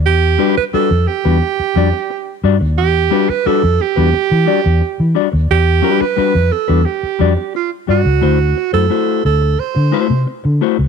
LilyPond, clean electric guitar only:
\new Staff \with { instrumentName = "Clean electric guitar" } { \time 4/4 \key e \minor \tempo 4 = 88 r8 <g d' fis' b'>16 r16 <g d' fis' b'>16 r8 <g d' fis' b'>16 r8 <g d' fis' d''>16 r8. <g d' fis' d''>16 r16 | r8 <g d' fis' b'>16 r16 <g d' fis' b'>16 r8 <g d' fis' b'>16 r8 <g d' fis' d''>16 r8. <g d' fis' d''>16 r16 | r8 <g d' fis' b'>16 r16 <g d' fis' b'>16 r8 <g d' fis' b'>16 r8 <g d' fis' d''>16 r8. <g d' fis' d''>16 r16 | <a e' fis' c''>16 r8 <a e' fis' c''>16 <a e' fis' c''>8 r4 <a e' fis' c''>16 r8. <a e' fis' c''>16 r16 | }